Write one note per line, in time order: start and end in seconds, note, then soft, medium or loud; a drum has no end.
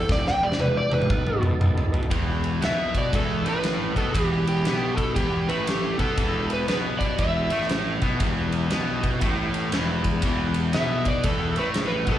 0.00 0.10 A4 loud
0.09 0.30 E1 loud
0.09 1.09 D4 medium
0.09 1.09 E4 medium
0.09 1.09 G4 medium
0.09 0.27 D5 medium
0.09 kick loud
0.09 snare medium
0.27 0.43 G5 loud
0.27 snare medium
0.40 0.53 E1 medium
0.40 0.59 D5 loud
0.52 snare medium
0.59 0.80 E1 medium
0.59 0.76 B4 medium
0.59 high tom medium
0.77 0.93 D5 loud
0.90 1.10 E1 medium
0.90 1.42 B4 loud
0.90 high tom medium
1.02 mid tom medium
1.10 1.31 B1 loud
1.10 2.10 B3 medium
1.10 2.10 D#4 medium
1.10 2.10 A4 medium
1.10 kick loud
1.27 mid tom medium
1.40 1.53 B2 medium
1.40 mid tom loud
1.60 1.81 B1 medium
1.60 mid tom loud
1.78 floor tom medium
1.92 2.05 B2 medium
1.92 floor tom loud
2.03 floor tom medium
2.10 2.58 E1 medium
2.10 2.61 E2 medium
2.10 2.61 E3 medium
2.10 6.13 B3 medium
2.10 6.13 E4 medium
2.10 6.13 G4 medium
2.10 kick loud
2.10 ride medium
2.44 ride medium
2.61 3.08 B1 medium
2.61 3.12 B2 medium
2.61 3.12 B3 medium
2.61 2.98 E5 medium
2.61 snare loud
2.61 ride medium
2.95 3.14 D5 medium
2.95 kick medium
2.95 ride medium
3.12 3.43 E1 medium
3.12 3.43 E2 medium
3.12 3.44 E3 loud
3.12 3.48 A4 medium
3.12 kick loud
3.12 ride medium
3.44 3.92 A1 medium
3.44 3.94 A2 medium
3.44 3.95 A3 medium
3.44 3.97 B4 medium
3.44 ride medium
3.64 snare loud
3.64 ride medium
3.95 4.13 B1 medium
3.95 4.13 B2 medium
3.95 4.13 B3 loud
3.95 4.12 A4 medium
3.95 kick medium
3.95 ride medium
4.12 4.61 E1 medium
4.12 4.64 E2 medium
4.12 4.64 E3 loud
4.12 4.48 G4 medium
4.12 kick loud
4.12 ride medium
4.47 4.96 G4 medium
4.47 ride medium
4.63 5.11 B1 medium
4.63 5.15 B2 medium
4.63 5.15 B3 loud
4.63 snare loud
4.63 ride medium
4.97 5.14 A4 medium
4.97 kick medium
4.97 ride medium
5.15 5.46 E1 medium
5.15 5.47 E2 medium
5.15 5.47 E3 loud
5.15 5.49 G4 medium
5.15 kick loud
5.15 ride medium
5.47 5.95 A1 medium
5.47 5.97 A2 medium
5.47 5.98 A3 loud
5.47 5.65 B4 medium
5.47 ride medium
5.67 5.98 G4 medium
5.67 snare loud
5.67 ride loud
5.98 6.16 B1 medium
5.98 6.16 B2 medium
5.98 6.17 B3 loud
5.98 6.51 A4 medium
5.98 kick medium
5.98 ride medium
6.17 6.64 E1 medium
6.17 6.67 E2 loud
6.17 6.67 E3 loud
6.17 10.19 B3 medium
6.17 10.19 E4 medium
6.17 10.19 G4 medium
6.17 kick loud
6.17 ride loud
6.50 6.67 B4 medium
6.50 ride medium
6.68 7.15 B1 medium
6.68 7.18 B2 medium
6.68 7.18 B3 loud
6.68 6.77 B4 medium
6.68 snare loud
6.68 ride medium
6.99 7.18 D5 medium
6.99 kick medium
6.99 ride medium
7.18 7.49 E1 medium
7.18 7.49 E2 medium
7.18 7.50 E3 loud
7.18 7.66 E5 medium
7.18 kick loud
7.18 ride medium
7.50 7.98 A1 medium
7.50 8.01 A2 medium
7.50 8.01 A3 medium
7.50 ride medium
7.62 snare soft
7.69 snare loud
7.69 ride medium
8.02 8.19 B1 medium
8.02 8.19 B2 medium
8.02 8.20 B3 loud
8.02 kick medium
8.02 ride medium
8.20 8.67 E1 medium
8.20 8.70 E2 medium
8.20 8.70 E3 loud
8.20 kick loud
8.20 ride medium
8.52 ride medium
8.70 9.17 B1 medium
8.70 9.20 B2 medium
8.70 9.21 B3 medium
8.70 snare loud
8.70 ride medium
9.04 kick medium
9.04 ride medium
9.21 9.68 A1 medium
9.21 9.71 A2 medium
9.21 9.72 A3 medium
9.21 kick loud
9.21 ride medium
9.54 ride medium
9.72 10.19 E1 medium
9.72 10.22 E2 medium
9.72 10.23 E3 loud
9.72 snare loud
9.72 ride loud
10.04 kick medium
10.04 ride medium
10.22 10.70 E1 medium
10.22 10.73 E2 medium
10.22 10.73 E3 medium
10.22 12.19 B3 medium
10.22 12.19 E4 medium
10.22 12.19 G4 medium
10.22 kick loud
10.22 ride loud
10.54 ride medium
10.73 11.20 B1 medium
10.73 11.23 B2 medium
10.73 11.23 B3 loud
10.73 11.08 E5 medium
10.73 snare loud
10.73 ride medium
11.05 11.23 D5 medium
11.05 kick medium
11.05 ride medium
11.24 11.54 E1 loud
11.24 11.55 E2 medium
11.24 11.55 E3 loud
11.24 11.58 A4 medium
11.24 kick loud
11.24 ride medium
11.56 12.03 A1 medium
11.56 12.06 A2 medium
11.56 12.06 A3 loud
11.56 11.66 B4 medium
11.56 ride medium
11.74 snare loud
11.74 ride medium
11.87 12.08 B4 medium
12.06 12.19 B1 medium
12.06 12.19 B2 medium
12.06 12.19 B3 loud
12.06 kick medium
12.06 ride medium
12.12 12.19 A4 medium